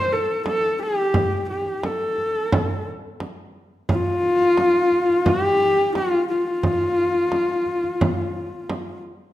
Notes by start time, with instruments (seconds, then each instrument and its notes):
Already playing: horsehead fiddle C5
0.13 horsehead fiddle A4
0.46 horsehead fiddle A4, frame drum
0.82 horsehead fiddle G4
1.14 frame drum
1.49 horsehead fiddle G4
1.66 frame drum
1.83 horsehead fiddle A4, frame drum
2.18 frame drum
2.35 frame drum
2.52 frame drum
3.20 frame drum
3.89 horsehead fiddle F4, frame drum
4.41 frame drum
4.57 frame drum
4.92 frame drum
5.10 frame drum
5.26 horsehead fiddle G4, frame drum
5.95 horsehead fiddle F4, frame drum
6.30 horsehead fiddle F4
6.63 frame drum
7.32 frame drum
7.66 frame drum
7.84 frame drum
8.01 frame drum
8.70 frame drum